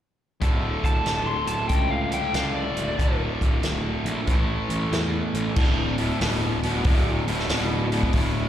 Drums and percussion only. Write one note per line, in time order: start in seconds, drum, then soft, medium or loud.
0.42 kick medium
0.42 closed hi-hat medium
0.84 kick medium
0.84 closed hi-hat medium
1.06 snare medium
1.06 closed hi-hat medium
1.47 closed hi-hat medium
1.69 kick medium
1.69 closed hi-hat medium
2.12 closed hi-hat medium
2.34 snare medium
2.34 closed hi-hat medium
2.77 closed hi-hat medium
2.99 kick medium
2.99 closed hi-hat medium
3.41 kick medium
3.41 closed hi-hat medium
3.63 snare medium
3.63 closed hi-hat medium
4.06 closed hi-hat medium
4.27 kick loud
4.27 closed hi-hat medium
4.70 closed hi-hat medium
4.93 snare loud
4.93 closed hi-hat medium
5.35 closed hi-hat medium
5.56 kick loud
5.56 crash loud
5.98 open hi-hat medium
6.21 snare loud
6.21 open hi-hat medium
6.63 open hi-hat medium
6.84 kick loud
6.84 open hi-hat medium
7.28 open hi-hat medium
7.40 snare soft
7.49 snare loud
7.49 open hi-hat medium
7.92 open hi-hat medium
8.03 kick medium
8.13 kick medium
8.13 open hi-hat medium